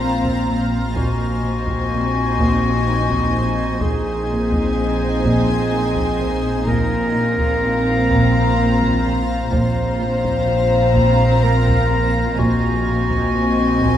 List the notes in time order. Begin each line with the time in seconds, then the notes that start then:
Already playing: A#1 A#2 C4 F4 C5 F5 A#5
0.01 A#3
0.24 taiko
0.48 A#2
0.94 A#1 A#2 C4 D#4 F#4 C5 D#5 G#5, taiko
1.44 A#2
1.67 taiko
1.92 A#2
2.38 A#2, taiko
2.87 A#3
3.10 taiko
3.35 A#2
3.81 A#1 A#2 C4 D#4 G#4 C5 D#5 G#5, taiko
4.30 A#2
4.52 taiko
4.76 A#2
5.23 A#2, taiko
5.73 A#3
5.96 taiko
6.21 A#2
6.66 A#1 A#2 C4 F4 A#4 C5 F5 A#5, taiko
7.16 A#2
7.38 taiko
7.63 A#2
8.10 A#2, taiko
8.59 A#3
8.82 taiko
9.07 A#2
9.52 A#1 A#2 C4 F4 C5 F5 A#5, taiko
10.00 A#2
10.24 taiko
10.47 A#2
10.95 A#2, taiko
11.43 A#3 A#4
11.67 taiko
11.89 A#2
12.37 A#1 A#2 C4 D#4 F#4 C5 D#5 G#5, taiko
12.86 A#2
13.10 taiko
13.33 A#2
13.81 A#2, taiko